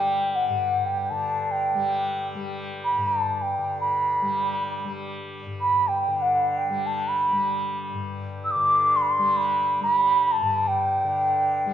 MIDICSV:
0, 0, Header, 1, 3, 480
1, 0, Start_track
1, 0, Tempo, 500000
1, 11267, End_track
2, 0, Start_track
2, 0, Title_t, "Bansuri"
2, 0, Program_c, 0, 73
2, 0, Note_on_c, 0, 79, 89
2, 337, Note_on_c, 0, 78, 72
2, 352, Note_off_c, 0, 79, 0
2, 823, Note_on_c, 0, 79, 67
2, 838, Note_off_c, 0, 78, 0
2, 1058, Note_on_c, 0, 81, 79
2, 1073, Note_off_c, 0, 79, 0
2, 1452, Note_on_c, 0, 79, 74
2, 1466, Note_off_c, 0, 81, 0
2, 2180, Note_off_c, 0, 79, 0
2, 2730, Note_on_c, 0, 83, 83
2, 2950, Note_on_c, 0, 81, 75
2, 2964, Note_off_c, 0, 83, 0
2, 3283, Note_on_c, 0, 79, 73
2, 3298, Note_off_c, 0, 81, 0
2, 3646, Note_off_c, 0, 79, 0
2, 3655, Note_on_c, 0, 83, 84
2, 4692, Note_off_c, 0, 83, 0
2, 5385, Note_on_c, 0, 83, 87
2, 5644, Note_on_c, 0, 79, 77
2, 5658, Note_off_c, 0, 83, 0
2, 5966, Note_on_c, 0, 78, 78
2, 5981, Note_off_c, 0, 79, 0
2, 6302, Note_on_c, 0, 79, 71
2, 6316, Note_off_c, 0, 78, 0
2, 6588, Note_on_c, 0, 81, 72
2, 6603, Note_off_c, 0, 79, 0
2, 6796, Note_on_c, 0, 83, 78
2, 6810, Note_off_c, 0, 81, 0
2, 7473, Note_off_c, 0, 83, 0
2, 8107, Note_on_c, 0, 88, 70
2, 8172, Note_on_c, 0, 86, 97
2, 8186, Note_off_c, 0, 88, 0
2, 8601, Note_on_c, 0, 84, 80
2, 8615, Note_off_c, 0, 86, 0
2, 8655, Note_on_c, 0, 83, 75
2, 8669, Note_off_c, 0, 84, 0
2, 8736, Note_on_c, 0, 84, 88
2, 8751, Note_off_c, 0, 83, 0
2, 8991, Note_on_c, 0, 83, 82
2, 9006, Note_off_c, 0, 84, 0
2, 9431, Note_off_c, 0, 83, 0
2, 9437, Note_on_c, 0, 83, 83
2, 9905, Note_on_c, 0, 81, 90
2, 9919, Note_off_c, 0, 83, 0
2, 10250, Note_on_c, 0, 79, 84
2, 10264, Note_off_c, 0, 81, 0
2, 11267, Note_off_c, 0, 79, 0
2, 11267, End_track
3, 0, Start_track
3, 0, Title_t, "Tanpura"
3, 0, Program_c, 1, 104
3, 0, Note_on_c, 1, 43, 51
3, 0, Note_on_c, 1, 50, 58
3, 0, Note_on_c, 1, 55, 52
3, 469, Note_off_c, 1, 43, 0
3, 473, Note_on_c, 1, 43, 54
3, 1061, Note_off_c, 1, 50, 0
3, 1065, Note_on_c, 1, 50, 51
3, 1674, Note_off_c, 1, 55, 0
3, 1674, Note_on_c, 1, 55, 52
3, 2254, Note_off_c, 1, 55, 0
3, 2254, Note_on_c, 1, 55, 56
3, 2854, Note_off_c, 1, 43, 0
3, 2858, Note_on_c, 1, 43, 50
3, 3437, Note_off_c, 1, 50, 0
3, 3440, Note_on_c, 1, 50, 47
3, 4048, Note_off_c, 1, 55, 0
3, 4048, Note_on_c, 1, 55, 53
3, 4649, Note_off_c, 1, 55, 0
3, 4649, Note_on_c, 1, 55, 52
3, 5241, Note_off_c, 1, 43, 0
3, 5245, Note_on_c, 1, 43, 45
3, 5832, Note_off_c, 1, 50, 0
3, 5836, Note_on_c, 1, 50, 49
3, 6425, Note_off_c, 1, 55, 0
3, 6425, Note_on_c, 1, 55, 53
3, 7023, Note_off_c, 1, 55, 0
3, 7023, Note_on_c, 1, 55, 50
3, 7617, Note_off_c, 1, 43, 0
3, 7621, Note_on_c, 1, 43, 52
3, 8211, Note_off_c, 1, 50, 0
3, 8215, Note_on_c, 1, 50, 56
3, 8815, Note_off_c, 1, 55, 0
3, 8815, Note_on_c, 1, 55, 51
3, 9411, Note_off_c, 1, 55, 0
3, 9411, Note_on_c, 1, 55, 54
3, 9997, Note_off_c, 1, 43, 0
3, 10000, Note_on_c, 1, 43, 57
3, 10596, Note_off_c, 1, 50, 0
3, 10600, Note_on_c, 1, 50, 55
3, 11193, Note_off_c, 1, 55, 0
3, 11193, Note_on_c, 1, 55, 53
3, 11267, Note_off_c, 1, 43, 0
3, 11267, Note_off_c, 1, 50, 0
3, 11267, Note_off_c, 1, 55, 0
3, 11267, End_track
0, 0, End_of_file